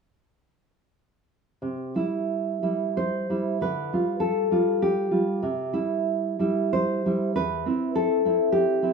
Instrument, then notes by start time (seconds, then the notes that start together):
nylon-string guitar
1.62 C3
1.95 G3 E4
2.62 G3 E4
2.97 C5
3.30 G3 E4
3.61 D3 B4
3.92 G3 F4
4.20 A4
4.51 G3 F4
4.82 G4
5.11 G3 F4
5.43 C3
5.73 G3 E4
6.39 G3 E4
6.73 C5
7.06 G3 E4
7.36 E2 B4
7.66 C4 E4
7.95 A4
8.25 C4 E4
8.52 G4
8.83 C4 E4